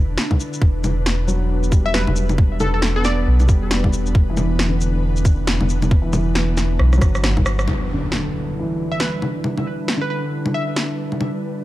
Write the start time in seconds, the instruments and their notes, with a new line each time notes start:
Already playing: sub bass E1, ambient pad D3 D4 E4 B4, felt piano D3
0.18 snare
0.31 kick, low bongo
0.40 shaker
0.53 shaker
0.62 sub bass E1, ambient pad B3 B4, kick
0.84 low bongo, shaker
1.06 snare
1.27 felt piano F#3, shaker
1.63 shaker
1.70 felt piano G3, kick, shaker
1.86 synth pluck E5
1.94 synth pluck B4, snare
2.07 sub bass E1, low bongo
2.16 shaker
2.29 low bongo, shaker
2.38 kick
2.60 synth pluck A4, low bongo, shaker
2.74 synth pluck A4
2.82 snare
2.96 felt piano B3, synth pluck A4
3.05 synth pluck D5, snare, shaker
3.27 sub bass B1
3.40 low bongo, shaker
3.48 sub bass E1, felt piano G3, kick, shaker
3.71 snare
3.84 kick, low bongo
3.93 shaker
4.06 shaker
4.15 sub bass E1, kick
4.30 felt piano E3
4.37 low bongo, shaker
4.59 snare
4.68 felt piano D3
4.81 shaker
5.17 shaker
5.25 kick, shaker
5.47 snare
5.60 sub bass E1, low bongo
5.69 shaker
5.82 low bongo, shaker
5.91 kick
6.02 felt piano E3
6.13 low bongo, shaker
6.35 snare
6.57 snare, shaker
6.79 sub bass B1, cross-stick
6.93 cross-stick, low bongo, shaker
6.98 felt piano F#3
7.02 sub bass G1, kick, cross-stick, shaker
7.15 cross-stick, shaker
7.24 cross-stick, snare
7.37 kick, low bongo
7.46 cross-stick, shaker
7.59 cross-stick, shaker
7.68 ambient pad G3 D4 E4 B4, impact, low bongo
7.93 felt piano D3
8.12 snare
8.59 felt piano E3
8.91 synth pluck E5
9.00 synth pluck B4, snare
9.22 low bongo
9.44 low bongo
9.57 low bongo
9.88 snare
9.97 felt piano D3
10.01 synth pluck B4
10.10 synth pluck B4
10.46 low bongo
10.54 synth pluck E5
10.76 snare
11.12 low bongo
11.21 ambient pad F#4, low bongo